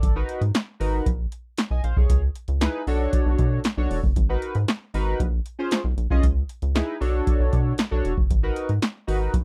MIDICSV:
0, 0, Header, 1, 4, 480
1, 0, Start_track
1, 0, Key_signature, 5, "minor"
1, 0, Tempo, 517241
1, 26, Time_signature, 4, 2, 24, 8
1, 8761, End_track
2, 0, Start_track
2, 0, Title_t, "Analog polysynth"
2, 0, Program_c, 0, 90
2, 0, Note_on_c, 0, 69, 52
2, 0, Note_on_c, 0, 74, 60
2, 136, Note_off_c, 0, 74, 0
2, 139, Note_off_c, 0, 69, 0
2, 145, Note_on_c, 0, 63, 87
2, 146, Note_on_c, 0, 66, 80
2, 148, Note_on_c, 0, 70, 78
2, 152, Note_on_c, 0, 71, 93
2, 390, Note_off_c, 0, 63, 0
2, 391, Note_off_c, 0, 66, 0
2, 392, Note_off_c, 0, 70, 0
2, 394, Note_off_c, 0, 71, 0
2, 740, Note_on_c, 0, 63, 87
2, 744, Note_on_c, 0, 66, 80
2, 745, Note_on_c, 0, 70, 88
2, 748, Note_on_c, 0, 71, 92
2, 983, Note_off_c, 0, 63, 0
2, 985, Note_off_c, 0, 66, 0
2, 986, Note_off_c, 0, 70, 0
2, 987, Note_off_c, 0, 71, 0
2, 1585, Note_on_c, 0, 80, 74
2, 1590, Note_on_c, 0, 75, 57
2, 1700, Note_off_c, 0, 80, 0
2, 1702, Note_off_c, 0, 75, 0
2, 1704, Note_on_c, 0, 77, 68
2, 1709, Note_on_c, 0, 72, 60
2, 1819, Note_off_c, 0, 77, 0
2, 1822, Note_off_c, 0, 72, 0
2, 1825, Note_on_c, 0, 73, 70
2, 1830, Note_on_c, 0, 68, 60
2, 2053, Note_off_c, 0, 73, 0
2, 2056, Note_off_c, 0, 68, 0
2, 2420, Note_on_c, 0, 63, 95
2, 2422, Note_on_c, 0, 64, 85
2, 2424, Note_on_c, 0, 68, 93
2, 2427, Note_on_c, 0, 71, 111
2, 2619, Note_off_c, 0, 63, 0
2, 2620, Note_off_c, 0, 64, 0
2, 2621, Note_off_c, 0, 68, 0
2, 2623, Note_off_c, 0, 71, 0
2, 2664, Note_on_c, 0, 62, 104
2, 2667, Note_on_c, 0, 66, 92
2, 2669, Note_on_c, 0, 69, 88
2, 2672, Note_on_c, 0, 73, 116
2, 3337, Note_off_c, 0, 62, 0
2, 3338, Note_off_c, 0, 66, 0
2, 3340, Note_off_c, 0, 69, 0
2, 3341, Note_off_c, 0, 73, 0
2, 3500, Note_on_c, 0, 62, 81
2, 3505, Note_on_c, 0, 66, 87
2, 3505, Note_on_c, 0, 69, 81
2, 3507, Note_on_c, 0, 73, 107
2, 3699, Note_off_c, 0, 62, 0
2, 3701, Note_off_c, 0, 66, 0
2, 3702, Note_off_c, 0, 69, 0
2, 3702, Note_off_c, 0, 73, 0
2, 3982, Note_on_c, 0, 63, 80
2, 3984, Note_on_c, 0, 66, 79
2, 3986, Note_on_c, 0, 70, 76
2, 3988, Note_on_c, 0, 71, 97
2, 4229, Note_off_c, 0, 63, 0
2, 4230, Note_off_c, 0, 66, 0
2, 4231, Note_off_c, 0, 70, 0
2, 4232, Note_off_c, 0, 71, 0
2, 4583, Note_on_c, 0, 63, 98
2, 4587, Note_on_c, 0, 66, 86
2, 4590, Note_on_c, 0, 70, 87
2, 4590, Note_on_c, 0, 71, 110
2, 4825, Note_off_c, 0, 63, 0
2, 4827, Note_off_c, 0, 66, 0
2, 4828, Note_off_c, 0, 70, 0
2, 4828, Note_off_c, 0, 71, 0
2, 5184, Note_on_c, 0, 61, 94
2, 5186, Note_on_c, 0, 65, 87
2, 5188, Note_on_c, 0, 68, 82
2, 5191, Note_on_c, 0, 72, 101
2, 5381, Note_off_c, 0, 61, 0
2, 5382, Note_off_c, 0, 65, 0
2, 5383, Note_off_c, 0, 68, 0
2, 5385, Note_off_c, 0, 72, 0
2, 5666, Note_on_c, 0, 61, 96
2, 5667, Note_on_c, 0, 65, 90
2, 5669, Note_on_c, 0, 68, 92
2, 5674, Note_on_c, 0, 75, 109
2, 5786, Note_off_c, 0, 61, 0
2, 5787, Note_off_c, 0, 65, 0
2, 5788, Note_off_c, 0, 68, 0
2, 5790, Note_off_c, 0, 75, 0
2, 6263, Note_on_c, 0, 63, 105
2, 6266, Note_on_c, 0, 64, 99
2, 6267, Note_on_c, 0, 68, 86
2, 6271, Note_on_c, 0, 71, 104
2, 6460, Note_off_c, 0, 63, 0
2, 6462, Note_off_c, 0, 64, 0
2, 6463, Note_off_c, 0, 68, 0
2, 6464, Note_off_c, 0, 71, 0
2, 6500, Note_on_c, 0, 62, 100
2, 6502, Note_on_c, 0, 66, 84
2, 6506, Note_on_c, 0, 69, 94
2, 6508, Note_on_c, 0, 73, 101
2, 7175, Note_off_c, 0, 62, 0
2, 7176, Note_off_c, 0, 66, 0
2, 7178, Note_off_c, 0, 69, 0
2, 7179, Note_off_c, 0, 73, 0
2, 7340, Note_on_c, 0, 62, 86
2, 7343, Note_on_c, 0, 66, 85
2, 7344, Note_on_c, 0, 69, 86
2, 7348, Note_on_c, 0, 73, 94
2, 7539, Note_off_c, 0, 62, 0
2, 7540, Note_off_c, 0, 66, 0
2, 7541, Note_off_c, 0, 69, 0
2, 7543, Note_off_c, 0, 73, 0
2, 7821, Note_on_c, 0, 63, 80
2, 7825, Note_on_c, 0, 66, 80
2, 7827, Note_on_c, 0, 70, 85
2, 7828, Note_on_c, 0, 71, 98
2, 8068, Note_off_c, 0, 63, 0
2, 8070, Note_off_c, 0, 66, 0
2, 8071, Note_off_c, 0, 70, 0
2, 8072, Note_off_c, 0, 71, 0
2, 8419, Note_on_c, 0, 63, 91
2, 8419, Note_on_c, 0, 66, 85
2, 8423, Note_on_c, 0, 70, 74
2, 8427, Note_on_c, 0, 71, 98
2, 8663, Note_off_c, 0, 63, 0
2, 8663, Note_off_c, 0, 66, 0
2, 8665, Note_off_c, 0, 70, 0
2, 8666, Note_off_c, 0, 71, 0
2, 8761, End_track
3, 0, Start_track
3, 0, Title_t, "Analog synth bass"
3, 0, Program_c, 1, 38
3, 26, Note_on_c, 1, 32, 95
3, 213, Note_off_c, 1, 32, 0
3, 383, Note_on_c, 1, 44, 97
3, 478, Note_off_c, 1, 44, 0
3, 746, Note_on_c, 1, 32, 83
3, 933, Note_off_c, 1, 32, 0
3, 986, Note_on_c, 1, 34, 104
3, 1172, Note_off_c, 1, 34, 0
3, 1583, Note_on_c, 1, 35, 93
3, 1677, Note_off_c, 1, 35, 0
3, 1703, Note_on_c, 1, 34, 75
3, 1797, Note_off_c, 1, 34, 0
3, 1824, Note_on_c, 1, 36, 90
3, 1918, Note_off_c, 1, 36, 0
3, 1946, Note_on_c, 1, 37, 116
3, 2133, Note_off_c, 1, 37, 0
3, 2303, Note_on_c, 1, 37, 86
3, 2491, Note_off_c, 1, 37, 0
3, 2663, Note_on_c, 1, 35, 79
3, 2851, Note_off_c, 1, 35, 0
3, 3023, Note_on_c, 1, 35, 101
3, 3118, Note_off_c, 1, 35, 0
3, 3145, Note_on_c, 1, 47, 92
3, 3332, Note_off_c, 1, 47, 0
3, 3502, Note_on_c, 1, 35, 93
3, 3597, Note_off_c, 1, 35, 0
3, 3622, Note_on_c, 1, 28, 89
3, 3717, Note_off_c, 1, 28, 0
3, 3743, Note_on_c, 1, 30, 89
3, 3837, Note_off_c, 1, 30, 0
3, 3863, Note_on_c, 1, 32, 104
3, 4051, Note_off_c, 1, 32, 0
3, 4224, Note_on_c, 1, 44, 96
3, 4318, Note_off_c, 1, 44, 0
3, 4584, Note_on_c, 1, 32, 85
3, 4772, Note_off_c, 1, 32, 0
3, 4824, Note_on_c, 1, 34, 109
3, 5011, Note_off_c, 1, 34, 0
3, 5421, Note_on_c, 1, 35, 100
3, 5517, Note_off_c, 1, 35, 0
3, 5541, Note_on_c, 1, 34, 83
3, 5636, Note_off_c, 1, 34, 0
3, 5666, Note_on_c, 1, 36, 89
3, 5759, Note_off_c, 1, 36, 0
3, 5784, Note_on_c, 1, 37, 105
3, 5971, Note_off_c, 1, 37, 0
3, 6146, Note_on_c, 1, 37, 88
3, 6332, Note_off_c, 1, 37, 0
3, 6506, Note_on_c, 1, 35, 92
3, 6693, Note_off_c, 1, 35, 0
3, 6864, Note_on_c, 1, 35, 99
3, 6958, Note_off_c, 1, 35, 0
3, 6988, Note_on_c, 1, 47, 91
3, 7174, Note_off_c, 1, 47, 0
3, 7347, Note_on_c, 1, 35, 90
3, 7440, Note_off_c, 1, 35, 0
3, 7467, Note_on_c, 1, 28, 89
3, 7560, Note_off_c, 1, 28, 0
3, 7585, Note_on_c, 1, 30, 71
3, 7679, Note_off_c, 1, 30, 0
3, 7705, Note_on_c, 1, 32, 106
3, 7892, Note_off_c, 1, 32, 0
3, 8066, Note_on_c, 1, 44, 80
3, 8160, Note_off_c, 1, 44, 0
3, 8427, Note_on_c, 1, 32, 90
3, 8613, Note_off_c, 1, 32, 0
3, 8665, Note_on_c, 1, 34, 116
3, 8761, Note_off_c, 1, 34, 0
3, 8761, End_track
4, 0, Start_track
4, 0, Title_t, "Drums"
4, 27, Note_on_c, 9, 36, 103
4, 29, Note_on_c, 9, 42, 93
4, 120, Note_off_c, 9, 36, 0
4, 122, Note_off_c, 9, 42, 0
4, 268, Note_on_c, 9, 42, 79
4, 361, Note_off_c, 9, 42, 0
4, 386, Note_on_c, 9, 42, 46
4, 479, Note_off_c, 9, 42, 0
4, 507, Note_on_c, 9, 42, 81
4, 509, Note_on_c, 9, 38, 109
4, 518, Note_on_c, 9, 39, 81
4, 599, Note_off_c, 9, 42, 0
4, 601, Note_off_c, 9, 38, 0
4, 611, Note_off_c, 9, 39, 0
4, 749, Note_on_c, 9, 46, 65
4, 841, Note_off_c, 9, 46, 0
4, 987, Note_on_c, 9, 36, 110
4, 987, Note_on_c, 9, 42, 91
4, 1080, Note_off_c, 9, 36, 0
4, 1080, Note_off_c, 9, 42, 0
4, 1226, Note_on_c, 9, 42, 80
4, 1318, Note_off_c, 9, 42, 0
4, 1462, Note_on_c, 9, 42, 97
4, 1470, Note_on_c, 9, 38, 100
4, 1480, Note_on_c, 9, 39, 86
4, 1555, Note_off_c, 9, 42, 0
4, 1563, Note_off_c, 9, 38, 0
4, 1572, Note_off_c, 9, 39, 0
4, 1707, Note_on_c, 9, 42, 69
4, 1800, Note_off_c, 9, 42, 0
4, 1826, Note_on_c, 9, 36, 94
4, 1919, Note_off_c, 9, 36, 0
4, 1946, Note_on_c, 9, 36, 96
4, 1946, Note_on_c, 9, 42, 102
4, 2038, Note_off_c, 9, 42, 0
4, 2039, Note_off_c, 9, 36, 0
4, 2186, Note_on_c, 9, 42, 85
4, 2278, Note_off_c, 9, 42, 0
4, 2300, Note_on_c, 9, 42, 43
4, 2393, Note_off_c, 9, 42, 0
4, 2423, Note_on_c, 9, 42, 75
4, 2425, Note_on_c, 9, 38, 107
4, 2434, Note_on_c, 9, 39, 86
4, 2515, Note_off_c, 9, 42, 0
4, 2517, Note_off_c, 9, 38, 0
4, 2527, Note_off_c, 9, 39, 0
4, 2666, Note_on_c, 9, 46, 63
4, 2759, Note_off_c, 9, 46, 0
4, 2904, Note_on_c, 9, 36, 114
4, 2904, Note_on_c, 9, 42, 93
4, 2997, Note_off_c, 9, 36, 0
4, 2997, Note_off_c, 9, 42, 0
4, 3142, Note_on_c, 9, 42, 76
4, 3145, Note_on_c, 9, 36, 93
4, 3235, Note_off_c, 9, 42, 0
4, 3238, Note_off_c, 9, 36, 0
4, 3378, Note_on_c, 9, 42, 98
4, 3386, Note_on_c, 9, 38, 113
4, 3396, Note_on_c, 9, 39, 88
4, 3471, Note_off_c, 9, 42, 0
4, 3479, Note_off_c, 9, 38, 0
4, 3489, Note_off_c, 9, 39, 0
4, 3626, Note_on_c, 9, 46, 63
4, 3719, Note_off_c, 9, 46, 0
4, 3743, Note_on_c, 9, 36, 106
4, 3836, Note_off_c, 9, 36, 0
4, 3863, Note_on_c, 9, 42, 90
4, 3864, Note_on_c, 9, 36, 100
4, 3956, Note_off_c, 9, 42, 0
4, 3957, Note_off_c, 9, 36, 0
4, 4103, Note_on_c, 9, 42, 79
4, 4196, Note_off_c, 9, 42, 0
4, 4220, Note_on_c, 9, 42, 43
4, 4313, Note_off_c, 9, 42, 0
4, 4344, Note_on_c, 9, 42, 74
4, 4346, Note_on_c, 9, 38, 120
4, 4356, Note_on_c, 9, 39, 82
4, 4437, Note_off_c, 9, 42, 0
4, 4439, Note_off_c, 9, 38, 0
4, 4449, Note_off_c, 9, 39, 0
4, 4587, Note_on_c, 9, 46, 63
4, 4680, Note_off_c, 9, 46, 0
4, 4825, Note_on_c, 9, 36, 104
4, 4827, Note_on_c, 9, 42, 90
4, 4917, Note_off_c, 9, 36, 0
4, 4920, Note_off_c, 9, 42, 0
4, 5064, Note_on_c, 9, 42, 76
4, 5157, Note_off_c, 9, 42, 0
4, 5300, Note_on_c, 9, 42, 105
4, 5309, Note_on_c, 9, 38, 112
4, 5318, Note_on_c, 9, 39, 94
4, 5393, Note_off_c, 9, 42, 0
4, 5401, Note_off_c, 9, 38, 0
4, 5411, Note_off_c, 9, 39, 0
4, 5548, Note_on_c, 9, 42, 64
4, 5641, Note_off_c, 9, 42, 0
4, 5665, Note_on_c, 9, 36, 96
4, 5758, Note_off_c, 9, 36, 0
4, 5785, Note_on_c, 9, 36, 105
4, 5785, Note_on_c, 9, 42, 85
4, 5878, Note_off_c, 9, 36, 0
4, 5878, Note_off_c, 9, 42, 0
4, 6026, Note_on_c, 9, 42, 85
4, 6119, Note_off_c, 9, 42, 0
4, 6145, Note_on_c, 9, 42, 41
4, 6238, Note_off_c, 9, 42, 0
4, 6268, Note_on_c, 9, 42, 73
4, 6270, Note_on_c, 9, 38, 111
4, 6279, Note_on_c, 9, 39, 86
4, 6360, Note_off_c, 9, 42, 0
4, 6362, Note_off_c, 9, 38, 0
4, 6372, Note_off_c, 9, 39, 0
4, 6512, Note_on_c, 9, 46, 70
4, 6605, Note_off_c, 9, 46, 0
4, 6747, Note_on_c, 9, 36, 118
4, 6749, Note_on_c, 9, 42, 87
4, 6840, Note_off_c, 9, 36, 0
4, 6841, Note_off_c, 9, 42, 0
4, 6986, Note_on_c, 9, 42, 66
4, 6988, Note_on_c, 9, 36, 91
4, 7079, Note_off_c, 9, 42, 0
4, 7081, Note_off_c, 9, 36, 0
4, 7220, Note_on_c, 9, 42, 102
4, 7228, Note_on_c, 9, 38, 120
4, 7237, Note_on_c, 9, 39, 85
4, 7313, Note_off_c, 9, 42, 0
4, 7321, Note_off_c, 9, 38, 0
4, 7330, Note_off_c, 9, 39, 0
4, 7469, Note_on_c, 9, 42, 65
4, 7561, Note_off_c, 9, 42, 0
4, 7586, Note_on_c, 9, 36, 100
4, 7679, Note_off_c, 9, 36, 0
4, 7707, Note_on_c, 9, 36, 100
4, 7708, Note_on_c, 9, 42, 93
4, 7800, Note_off_c, 9, 36, 0
4, 7800, Note_off_c, 9, 42, 0
4, 7946, Note_on_c, 9, 42, 76
4, 8039, Note_off_c, 9, 42, 0
4, 8065, Note_on_c, 9, 42, 44
4, 8158, Note_off_c, 9, 42, 0
4, 8187, Note_on_c, 9, 42, 74
4, 8189, Note_on_c, 9, 38, 108
4, 8198, Note_on_c, 9, 39, 91
4, 8279, Note_off_c, 9, 42, 0
4, 8281, Note_off_c, 9, 38, 0
4, 8291, Note_off_c, 9, 39, 0
4, 8430, Note_on_c, 9, 46, 66
4, 8523, Note_off_c, 9, 46, 0
4, 8665, Note_on_c, 9, 36, 117
4, 8667, Note_on_c, 9, 42, 100
4, 8758, Note_off_c, 9, 36, 0
4, 8760, Note_off_c, 9, 42, 0
4, 8761, End_track
0, 0, End_of_file